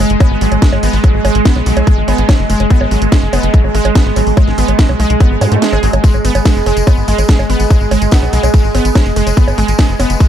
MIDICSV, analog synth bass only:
0, 0, Header, 1, 2, 480
1, 0, Start_track
1, 0, Key_signature, 5, "minor"
1, 0, Tempo, 416667
1, 1196, Time_signature, 4, 2, 24, 8
1, 11845, End_track
2, 0, Start_track
2, 0, Title_t, "Analog synth bass"
2, 0, Program_c, 0, 38
2, 115, Note_on_c, 0, 30, 94
2, 182, Note_off_c, 0, 30, 0
2, 355, Note_on_c, 0, 32, 87
2, 422, Note_off_c, 0, 32, 0
2, 475, Note_on_c, 0, 32, 100
2, 542, Note_off_c, 0, 32, 0
2, 595, Note_on_c, 0, 32, 97
2, 662, Note_off_c, 0, 32, 0
2, 835, Note_on_c, 0, 32, 88
2, 902, Note_off_c, 0, 32, 0
2, 955, Note_on_c, 0, 32, 99
2, 1022, Note_off_c, 0, 32, 0
2, 1075, Note_on_c, 0, 32, 96
2, 1142, Note_off_c, 0, 32, 0
2, 1315, Note_on_c, 0, 32, 87
2, 1382, Note_off_c, 0, 32, 0
2, 1435, Note_on_c, 0, 32, 100
2, 1502, Note_off_c, 0, 32, 0
2, 1555, Note_on_c, 0, 32, 92
2, 1622, Note_off_c, 0, 32, 0
2, 1795, Note_on_c, 0, 35, 90
2, 1862, Note_off_c, 0, 35, 0
2, 1915, Note_on_c, 0, 35, 100
2, 1982, Note_off_c, 0, 35, 0
2, 2035, Note_on_c, 0, 35, 94
2, 2102, Note_off_c, 0, 35, 0
2, 2275, Note_on_c, 0, 32, 88
2, 2342, Note_off_c, 0, 32, 0
2, 2395, Note_on_c, 0, 32, 96
2, 2462, Note_off_c, 0, 32, 0
2, 2515, Note_on_c, 0, 32, 92
2, 2582, Note_off_c, 0, 32, 0
2, 2755, Note_on_c, 0, 30, 92
2, 2822, Note_off_c, 0, 30, 0
2, 2875, Note_on_c, 0, 30, 101
2, 2942, Note_off_c, 0, 30, 0
2, 2995, Note_on_c, 0, 30, 96
2, 3062, Note_off_c, 0, 30, 0
2, 3235, Note_on_c, 0, 32, 89
2, 3302, Note_off_c, 0, 32, 0
2, 3355, Note_on_c, 0, 32, 99
2, 3422, Note_off_c, 0, 32, 0
2, 3475, Note_on_c, 0, 32, 92
2, 3542, Note_off_c, 0, 32, 0
2, 3715, Note_on_c, 0, 30, 90
2, 3782, Note_off_c, 0, 30, 0
2, 3835, Note_on_c, 0, 30, 100
2, 3902, Note_off_c, 0, 30, 0
2, 3955, Note_on_c, 0, 30, 95
2, 4022, Note_off_c, 0, 30, 0
2, 4195, Note_on_c, 0, 32, 88
2, 4262, Note_off_c, 0, 32, 0
2, 4315, Note_on_c, 0, 32, 100
2, 4382, Note_off_c, 0, 32, 0
2, 4435, Note_on_c, 0, 32, 93
2, 4502, Note_off_c, 0, 32, 0
2, 4675, Note_on_c, 0, 32, 89
2, 4742, Note_off_c, 0, 32, 0
2, 4795, Note_on_c, 0, 32, 103
2, 4862, Note_off_c, 0, 32, 0
2, 4915, Note_on_c, 0, 32, 94
2, 4982, Note_off_c, 0, 32, 0
2, 5155, Note_on_c, 0, 32, 90
2, 5222, Note_off_c, 0, 32, 0
2, 5275, Note_on_c, 0, 32, 99
2, 5342, Note_off_c, 0, 32, 0
2, 5395, Note_on_c, 0, 32, 91
2, 5462, Note_off_c, 0, 32, 0
2, 5636, Note_on_c, 0, 35, 89
2, 5703, Note_off_c, 0, 35, 0
2, 5756, Note_on_c, 0, 35, 100
2, 5823, Note_off_c, 0, 35, 0
2, 5875, Note_on_c, 0, 35, 92
2, 5942, Note_off_c, 0, 35, 0
2, 6115, Note_on_c, 0, 32, 89
2, 6182, Note_off_c, 0, 32, 0
2, 6235, Note_on_c, 0, 44, 99
2, 6302, Note_off_c, 0, 44, 0
2, 6356, Note_on_c, 0, 44, 95
2, 6423, Note_off_c, 0, 44, 0
2, 6596, Note_on_c, 0, 32, 89
2, 6663, Note_off_c, 0, 32, 0
2, 6715, Note_on_c, 0, 32, 102
2, 6783, Note_off_c, 0, 32, 0
2, 6835, Note_on_c, 0, 32, 96
2, 6902, Note_off_c, 0, 32, 0
2, 7075, Note_on_c, 0, 32, 88
2, 7143, Note_off_c, 0, 32, 0
2, 7195, Note_on_c, 0, 32, 99
2, 7262, Note_off_c, 0, 32, 0
2, 7315, Note_on_c, 0, 32, 94
2, 7382, Note_off_c, 0, 32, 0
2, 7555, Note_on_c, 0, 30, 89
2, 7622, Note_off_c, 0, 30, 0
2, 7675, Note_on_c, 0, 30, 102
2, 7742, Note_off_c, 0, 30, 0
2, 7795, Note_on_c, 0, 30, 95
2, 7862, Note_off_c, 0, 30, 0
2, 8035, Note_on_c, 0, 32, 87
2, 8102, Note_off_c, 0, 32, 0
2, 8155, Note_on_c, 0, 32, 99
2, 8222, Note_off_c, 0, 32, 0
2, 8275, Note_on_c, 0, 32, 97
2, 8342, Note_off_c, 0, 32, 0
2, 8515, Note_on_c, 0, 32, 91
2, 8582, Note_off_c, 0, 32, 0
2, 8635, Note_on_c, 0, 32, 99
2, 8702, Note_off_c, 0, 32, 0
2, 8755, Note_on_c, 0, 32, 97
2, 8822, Note_off_c, 0, 32, 0
2, 8995, Note_on_c, 0, 32, 89
2, 9062, Note_off_c, 0, 32, 0
2, 9115, Note_on_c, 0, 32, 100
2, 9182, Note_off_c, 0, 32, 0
2, 9235, Note_on_c, 0, 32, 90
2, 9302, Note_off_c, 0, 32, 0
2, 9475, Note_on_c, 0, 35, 87
2, 9542, Note_off_c, 0, 35, 0
2, 9595, Note_on_c, 0, 35, 99
2, 9662, Note_off_c, 0, 35, 0
2, 9715, Note_on_c, 0, 35, 94
2, 9782, Note_off_c, 0, 35, 0
2, 9955, Note_on_c, 0, 32, 88
2, 10023, Note_off_c, 0, 32, 0
2, 10075, Note_on_c, 0, 32, 99
2, 10142, Note_off_c, 0, 32, 0
2, 10195, Note_on_c, 0, 32, 94
2, 10262, Note_off_c, 0, 32, 0
2, 10435, Note_on_c, 0, 30, 89
2, 10502, Note_off_c, 0, 30, 0
2, 10555, Note_on_c, 0, 30, 105
2, 10622, Note_off_c, 0, 30, 0
2, 10675, Note_on_c, 0, 30, 92
2, 10742, Note_off_c, 0, 30, 0
2, 10915, Note_on_c, 0, 32, 85
2, 10982, Note_off_c, 0, 32, 0
2, 11035, Note_on_c, 0, 32, 102
2, 11102, Note_off_c, 0, 32, 0
2, 11155, Note_on_c, 0, 32, 93
2, 11222, Note_off_c, 0, 32, 0
2, 11395, Note_on_c, 0, 30, 91
2, 11462, Note_off_c, 0, 30, 0
2, 11515, Note_on_c, 0, 30, 101
2, 11582, Note_off_c, 0, 30, 0
2, 11635, Note_on_c, 0, 30, 95
2, 11702, Note_off_c, 0, 30, 0
2, 11845, End_track
0, 0, End_of_file